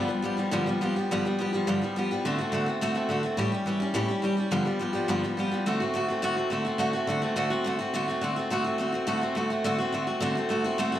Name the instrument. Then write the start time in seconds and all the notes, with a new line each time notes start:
steel-string acoustic guitar
0.08 F3 G3 B3 G4
0.22 F3 G3 B3 G4
0.37 F3 G3 B3 G4
0.51 G2 D3 F3 G3 B3 G4
0.66 F3 G3 B3 G4
0.81 F3 G3 B3 G4
0.96 F3 G3 B3 G4
1.11 G2 D3 F3 G3 B3 G4
1.25 F3 G3 B3 G4
1.39 F3 G3 B3 G4
1.53 F3 G3 B3 G4
1.67 G2 D3 F3 G3 B3 G4
1.81 F3 G3 B3 G4
1.96 F3 G3 B3 G4
2.11 F3 G3 B3 G4
2.25 D3 A3 C4 F#4
2.38 A3 C4 F#4
2.52 D3 A3 C4 F#4
2.66 A3 C4 F#4
2.81 D3 A3 C4 F#4
2.95 A3 C4 F#4
3.09 D3 A3 C4 F#4
3.23 A3 C4 F#4
3.37 A2 E3 G3 C#4 G4
3.52 G3 C#4 G4
3.66 E3 G3 C#4 G4
3.80 G3 C#4 G4
3.94 A2 E3 G3 C#4 G4
4.08 G3 C#4 G4
4.22 E3 G3 C#4 G4
4.37 G3 C#4 G4
4.51 G2 D3 F3 G3 B3 G4
4.65 F3 G3 B3 G4
4.79 F3 G3 B3 G4
4.93 F3 G3 B3 G4
5.08 G2 D3 F3 G3 B3 G4
5.23 F3 G3 B3 G4
5.37 F3 G3 B3 G4
5.51 F3 G3 B3 G4
5.66 D3 A3 C4 F#4
5.80 A3 C4 F#4
5.94 D3 A3 C4 F#4
6.08 A3 C4 F#4
6.22 D3 A3 C4 F#4
6.36 A3 C4 F#4
6.50 D3 A3 C4 F#4
6.65 A3 C4 F#4
6.78 D3 A3 C4 F#4
6.93 A3 C4 F#4
7.07 D3 A3 C4 F#4
7.22 A3 C4 F#4
7.36 D3 A3 C4 F#4
7.50 A3 C4 F#4
7.64 D3 A3 C4 F#4
7.79 A3 C4 F#4
7.94 D3 A3 C4 F#4
8.08 A3 C4 F#4
8.21 D3 A3 C4 F#4
8.36 A3 C4 F#4
8.50 D3 A3 C4 F#4
8.64 A3 C4 F#4
8.78 D3 A3 C4 F#4
8.92 A3 C4 F#4
9.07 D3 A3 C4 F#4
9.21 A3 C4 F#4
9.35 D3 A3 C4 F#4
9.50 A3 C4 F#4
9.64 D3 A3 C4 F#4
9.78 A3 C4 F#4
9.92 D3 A3 C4 F#4
10.07 A3 C4 F#4
10.20 D3 A3 C4 F#4
10.35 A3 C4 F#4
10.49 D3 A3 C4 F#4
10.64 A3 C4 F#4
10.78 D3 A3 C4 F#4
10.92 A3 C4 F#4